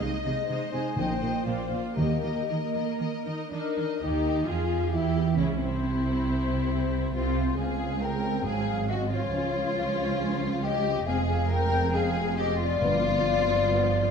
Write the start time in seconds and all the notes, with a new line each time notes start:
0.00 C2 C3 G#3 D#4 D#5
0.24 C3 G#3 D#4 D#5
0.48 C3 G#3 D#4 C5 D#5
0.72 C3 G#3 D#4 D#5 G#5
0.96 A#1 A#2 A#3 D#4 D#5 G5
1.21 A#2 A#3 D#4 D#5
1.45 A#1 A#2 A#3 F4 D5 F5
1.71 A#2 A#3 F4 D5
1.96 D#2 D#3 A#3 G4 A#4 D#5
2.22 D#3 A#3 G4 D#5
2.49 D#3 A#3 D#5
2.75 D#3 D#5
2.99 D#3 D#5
3.26 D#3 D#4 D#5
3.51 D#3 D4 D#4 A#4 D#5
3.77 D#3 D#5
4.01 D#2 D#3 D#4 G4 D#5
4.46 F2 F3 F4 G#4 F5
4.92 E2 E3 E4 G4 E5
5.35 C#2 C#3 C#4 E4 C#5
5.56 C3 C4 E4 C5
5.60 C2 E4
7.12 C2 C3 C4 F4 C5
7.58 C#2 G#3 C4 G#4 F5
8.01 A#4 G5
8.44 G#1 G#2 F#3 C4 G#4 F5
8.89 F#4 D#5
9.11 F4 C#5
9.32 C#2 F3 C#4
10.19 F3 C#4
10.64 G4 D#5
11.06 F1 F2 G#3 C4 G#4 F5
11.50 A#4 G5
11.93 G#3 C4 G#4 F5
12.37 G4 D#5
12.58 F4 D5
12.79 G1 G2 F3 B3
13.68 F3 B3